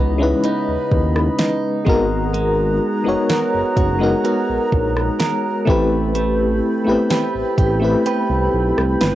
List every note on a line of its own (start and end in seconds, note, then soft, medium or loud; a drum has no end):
0.00 0.33 C#2 loud
0.00 1.96 C#3 medium
0.00 0.44 E3 medium
0.00 0.18 G#3 medium
0.00 0.44 B3 medium
0.00 5.63 B3 medium
0.00 0.19 C#4 medium
0.00 0.21 D#4 medium
0.00 0.45 D#4 medium
0.00 0.22 E4 medium
0.00 0.23 B4 loud
0.00 1.69 D#5 medium
0.00 1.69 B5 medium
0.18 1.38 G#3 medium
0.18 1.38 C#4 medium
0.18 1.39 D#4 medium
0.18 1.40 E4 medium
0.23 1.40 B4 loud
0.44 3.29 B3 medium
0.44 1.38 D#4 medium
0.44 closed hi-hat medium
0.68 0.77 D#2 medium
0.91 1.29 D#2 loud
0.91 kick medium
1.16 cross-stick medium
1.39 3.30 D#4 medium
1.39 snare loud
1.39 closed hi-hat medium
1.85 2.80 G#1 loud
1.85 2.81 G#3 medium
1.85 2.33 G#3 medium
1.85 2.81 B3 medium
1.85 2.82 D#4 medium
1.85 2.82 F#4 medium
1.85 5.64 G#4 medium
1.85 5.63 F#5 medium
1.85 5.64 A#5 medium
1.85 kick loud
1.89 2.83 A#4 loud
2.34 5.67 G#3 medium
2.34 closed hi-hat medium
3.04 3.16 F#1 soft
3.04 3.73 G#3 medium
3.04 3.73 B3 medium
3.04 3.74 D#4 medium
3.04 3.74 F#4 medium
3.09 3.75 C#5 medium
3.29 4.24 B3 medium
3.29 3.76 F#4 medium
3.29 4.24 A#4 medium
3.29 snare loud
3.29 closed hi-hat medium
3.54 3.63 F#1 medium
3.77 4.14 F#1 loud
3.77 4.24 F#4 medium
3.77 kick loud
3.77 closed hi-hat medium
3.99 5.19 G#3 medium
3.99 5.19 B3 medium
3.99 5.20 D#4 medium
3.99 5.21 F#4 medium
4.03 5.21 A#4 loud
4.24 6.18 B3 medium
4.24 5.77 F#4 medium
4.24 5.18 A#4 medium
4.24 closed hi-hat medium
4.49 4.58 A#1 medium
4.72 5.10 A#1 loud
4.72 kick medium
4.97 cross-stick medium
5.20 5.77 A#4 medium
5.20 snare loud
5.20 closed hi-hat medium
5.65 6.61 A1 loud
5.65 6.62 A3 loud
5.65 6.14 A3 medium
5.65 6.62 C4 medium
5.65 9.15 C4 medium
5.65 6.63 E4 medium
5.65 6.63 G4 medium
5.65 9.15 A4 medium
5.65 9.15 G5 medium
5.65 9.15 B5 medium
5.65 kick loud
5.70 6.64 B4 loud
6.15 9.15 A3 medium
6.15 closed hi-hat medium
6.84 6.96 A1 soft
6.84 7.53 A3 medium
6.84 6.93 B3 medium
6.84 7.55 E4 medium
6.84 7.55 G4 medium
6.89 7.57 C4 medium
6.89 7.56 B4 medium
7.10 8.05 C4 medium
7.10 7.57 G4 medium
7.10 8.07 B4 medium
7.10 snare loud
7.10 closed hi-hat medium
7.35 7.44 A1 soft
7.58 7.95 A1 medium
7.58 8.05 G4 medium
7.58 kick loud
7.58 closed hi-hat medium
7.80 9.00 A3 medium
7.80 9.00 C4 medium
7.80 9.01 E4 medium
7.80 9.01 G4 medium
7.84 9.02 B4 loud
8.06 9.15 C4 medium
8.06 9.15 G4 medium
8.06 9.01 B4 medium
8.06 closed hi-hat medium
8.30 8.48 C2 loud
8.54 8.72 B1 medium
8.77 8.96 C2 medium
8.77 cross-stick loud
9.01 9.15 G1 loud
9.01 9.15 B4 medium
9.01 snare loud
9.01 closed hi-hat medium